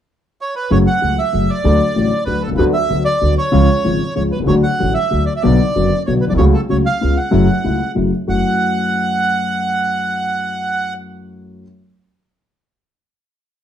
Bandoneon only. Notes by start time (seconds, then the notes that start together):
0.41 C#5
0.56 B4
0.71 C#5
0.87 F#5
1.19 E5
1.50 D5
2.25 B4
2.43 A4
2.57 B4
2.74 E5
3.05 D5
3.38 C#5
4.16 C#5
4.32 B4
4.47 C#5
4.63 F#5
4.94 E5
5.26 D5
5.36 E5
5.42 D5
6.06 C#5
6.21 B4
6.29 D5
6.37 C#5
6.54 A4
6.70 C#5
6.86 F5
7.17 F#5
8.29 F#5